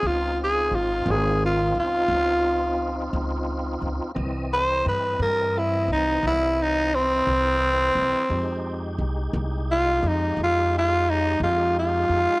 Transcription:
<<
  \new Staff \with { instrumentName = "Tenor saxophone" } { \time 12/8 \key f \minor \tempo 4. = 58 f'8 aes'8 f'8 aes'8 f'8 f'2 r4. | r8 c''8 b'8 bes'8 e'8 ees'8 e'8 ees'8 c'2~ | c'4 r4 f'8 ees'8 f'8 f'8 ees'8 f'8 f'4 | }
  \new Staff \with { instrumentName = "Tonewheel organ" } { \time 12/8 \key f \minor <c' ees' f'>1. | <e c' ees''>1. | <aes ees' g'>1. | }
  \new Staff \with { instrumentName = "Upright bass" } { \clef bass \time 12/8 \key f \minor des,4 aes,,8 aes,,4 des,8 des,4. des,4 des,16 r16 | c,4 g,8 g,4 c,8 c,4. c,4 c,16 r16 | f,4 c,8 c,4 f,8 f,4. f,4 f,16 r16 | }
>>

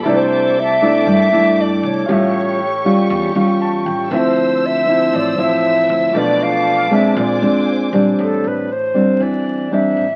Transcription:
<<
  \new Staff \with { instrumentName = "String section" } { \time 4/4 \key a \minor \tempo 4 = 118 <a' e'' d'''>1 | <g' cis'''>1 | <c'' e'''>1 | <b' a'' d'''>2 <c'' aes'' d'''>2 |
r1 | }
  \new Staff \with { instrumentName = "Flute" } { \time 4/4 \key a \minor c''4 e''4 e''4 d''8 cis''8~ | cis''2~ cis''8 r4. | c''4 e''4 d''8 e''4. | d''8 f''4 e''8 d''4 r4 |
a'8 b'8 c''4 d''4 e''4 | }
  \new Staff \with { instrumentName = "Grand piano" } { \time 4/4 \key a \minor << { r1 | r2. a''8 g''8 | r1 | r1 |
r1 | } \\ { <e' g' a' d''>1 | <g' cis'' e'' f''>1 | <a' c'' e''>1 | <f' a' b' d''>2 <f' aes' c'' d''>2 |
r1 | } >> }
  \new Staff \with { instrumentName = "Nylon-string guitar" } { \time 4/4 \key a \minor << { <a d' e'>4 r8 <a d' e'>4 <a d' e'>4. | <g cis' f'>4 r8 <g cis' f'>4 <g cis' f'>4. | <f c' e'>4. <f c' e'>4 <f c' e'>4. | <f a d'>4. <gis c' d'>4 <aes c' d'>4 <g c' d'>8~ |
<g c' d'>4 r8 <g c' d'>4. <g c' d'>8 r8 | } \\ { c2 g2 | a,2 r2 | d2 a,2 | b,2 bes,2 |
a,2 e2 | } >> }
  \new Staff \with { instrumentName = "Upright bass" } { \clef bass \time 4/4 \key a \minor c,2 g,8 g,4 c,8 | a,,2 e,8 e,4 a,,8 | d,2 a,,8 a,,4 d,8 | b,,2 bes,,8 f,4 bes,,8 |
a,,8 a,,4. e,4. a,,8 | }
>>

